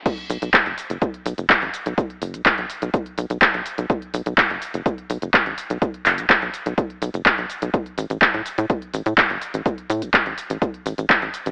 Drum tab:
CC |x---------------|----------------|----------------|----------------|
HH |xxoxxxoxxxoxxxox|xxoxxxoxxxoxxxox|xxoxxxoxxxoxxxox|xxoxxxoxxxoxxxox|
SH |x-xxx-xxx-xxx-xx|x-xxx-xxx-xxx-xx|x-xxx-xxx-xxx-xx|x-xxx-xxx-xxx-xx|
CP |----x-------x---|----x-------x---|----x-------x---|--x-x-------x---|
BD |o---o---o---o---|o---o---o---o---|o---o---o---o---|o---o---o---o---|

CC |----------------|----------------|
HH |xxoxxxoxxxoxxxox|xxoxxxoxxxoxxxox|
SH |x-xxx-xxx-xxx-xx|x-xxx-xxx-xxx-xx|
CP |----x-------x---|----x-------x---|
BD |o---o---o---o---|o---o---o---o---|